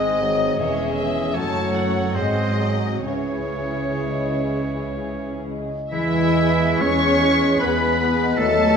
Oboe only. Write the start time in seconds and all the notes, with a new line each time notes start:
Already playing: D#5
1.34 C#5
2.15 C5
3.07 C#5
5.92 E4
6.81 C#5
7.60 B4
8.37 A4